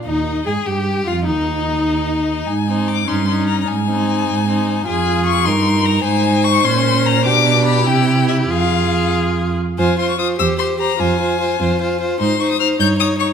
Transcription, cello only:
X:1
M:6/8
L:1/8
Q:3/8=99
K:Ablyd
V:1 name="Cello" clef=bass
E,,2 A,, G,,2 F,, | E,,6 | A,,3 G,,3 | A,,3 A,,3 |
[K:Fm] F,,3 G,,3 | A,,3 B,,3 | =B,,3 C,3 | F,,4- F,, z |
F,,3 =E,,3 | F,,3 F,,3 | A,,3 G,,3 |]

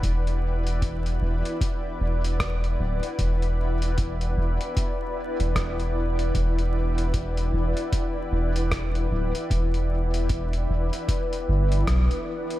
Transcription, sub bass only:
X:1
M:4/4
L:1/16
Q:"Swing 16ths" 1/4=76
K:Em
V:1 name="Sub bass" clef=bass
E,,,6 E,,, z3 E,,,4 D,,, z | E,,,6 E,,, z4 E,,,4- E,,, | E,,,6 E,,, z3 E,,,4 D,,, z | E,,,6 E,,, z3 G,,,2 B,,, z3 |]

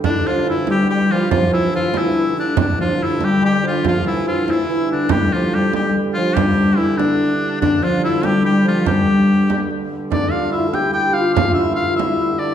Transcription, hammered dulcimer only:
X:1
M:6/8
L:1/16
Q:3/8=96
K:Dm
V:1 name="Hammered dulcimer" clef=bass
D,2 F,2 E,2 G,2 G,2 F,2 | F,2 E,2 F,2 E,4 D,2 | D,2 F,4 G,2 G,2 F,2 | F,2 E,/2 E,/2 E, F,2 E,2 E,2 D,2 |
G,2 F,2 G,2 G,2 z2 F,2 | G,4 E,2 D,6 | D,2 F,4 G,2 G,2 F,2 | G,8 z4 |
D2 F2 E2 G2 G2 F2 | F2 E2 F2 E4 D2 |]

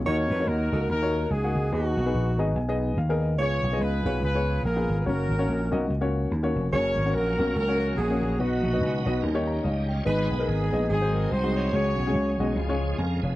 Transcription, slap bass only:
X:1
M:4/4
L:1/8
Q:"Swing" 1/4=144
K:F#
V:1 name="Slap bass" clef=bass
D,, E,, D,, C,, D,,2 C,, C,, | D,, B,,, A,,, G,,, B,,,2 D,,2 | C,, B,,, C,, B,,, C,,2 A,,, G,,, | F,,, G,,, A,,, B,,, C,,2 D,, E,,, |
F,,, G,,, A,,, B,,, C,,2 A,,, A,,, | B,,, A,,, C,, B,,, D,,2 C,,2 | G,,, B,,, G,,, A,,, G,,,2 ^B,,,2 | C,, B,,, C,, B,,, C,,2 E,, E,,, |]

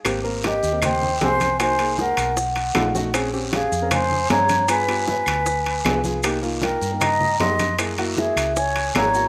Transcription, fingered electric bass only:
X:1
M:4/4
L:1/8
Q:1/4=155
K:Ab
V:1 name="Fingered electric bass" clef=bass
A,,,3 E,,3 C,,2- | C,,3 =B,,,3 _B,,,2- | B,,,3 F,,3 G,,2- | G,,3 =D,,3 C,,2- |
C,,3 G,,3 _G,,2- | _G,,3 D,,3 A,,,2 |]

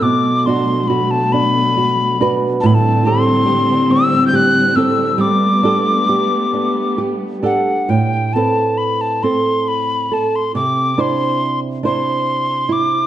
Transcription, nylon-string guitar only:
X:1
M:6/8
L:1/8
Q:3/8=46
K:Ador
V:1 name="Nylon-string guitar"
B,, [DF] F D F [DFB] | A,, [CGA] G C G [CGA] | G, [DGA] G D G [DGA] | A,, [CAB]2 [CA]2 A |
C, [DEc]2 [DEc]2 E |]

